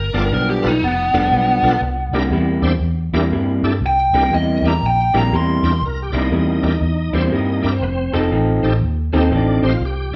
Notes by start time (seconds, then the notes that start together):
Already playing: G1 A#4
0.13 G1 G2 F3 B3 D4 F4 A4 D5
0.31 B1 G2 F3 B3 D4 A#4
0.50 G4
0.63 B1 D4 F4 A4 B4
0.68 D#4
0.82 F1 B3
1.14 F1 G2 F3 B3 D4 F4 A4 B4
1.31 B1 G2 F3 B3 D4
1.63 B1 D4 F4 A4 B4
1.81 C2
2.12 C2 C3 G3 A#3 D4 E4 G4 A#4
2.30 E2 C3 G3 A#3 E4
2.62 E2 D4 E4 G4 C5
2.80 E2
3.13 E2 C3 G3 A#3 D4 E4 G4 A#4
3.31 G2 C3 G3 A#3 E4
3.63 G2 D4 E4 G4 A4
3.81 C2
3.86 G5
4.13 C2 C3 G3 A#3 D4 E4 G4 A#4
4.31 E2 C3 G3 A#3 E4 D#5
4.62 E2 D4 E4 G4 A#4
4.68 A#5
4.81 A#1
4.86 G5
5.14 A#1 C3 G3 A#3 D4 E4 G4 A#4
5.18 A#5
5.32 E2 C3 G3 A#3 E4 C6
5.63 E2 D4 E4 G4 A#4
5.82 C2
5.86 A#4
6.02 G4
6.12 C2 C3 G3 A#3 D4 E4 G4 A#4
6.18 D#4
6.31 E2 C3 G3 A#3 E4
6.63 E2 D4 E4 G4 A#4
6.81 E2
7.13 E2 C3 G3 A#3 D4 E4 G4 C5
7.18 C4
7.31 G2 C3 G3 A#3 D#4 E4
7.52 D#4
7.62 G2 D4 E4 G4 A#4
7.72 C4
7.81 F1 B3
7.88 C4
8.13 F1 F3 C4 D#4 G4 A4
8.31 A1 F3 C4 D#4 A4
8.63 A1 C4 D#4 G4 A4
8.81 D#2
9.12 D#2 F3 C4 D#4 G4 A4
9.18 C4
9.30 A1 F3 C4 D#4 A4
9.36 D4
9.63 A1 C4 D#4 G4 C5
9.68 F4
9.80 C2
9.85 G4